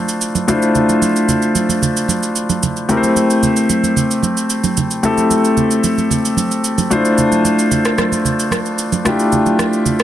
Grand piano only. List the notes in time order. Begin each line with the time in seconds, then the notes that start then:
Already playing: A3 D4 E4 F4 C5
0.48 A3 D4 E4 F4 C5
2.89 A3 C4 E4 G4 A#4
2.97 C5
5.03 A3 C4 E4 G4 A4
6.90 A3 D4 E4 F4 C5
9.05 A3 D4 E4 F4 G4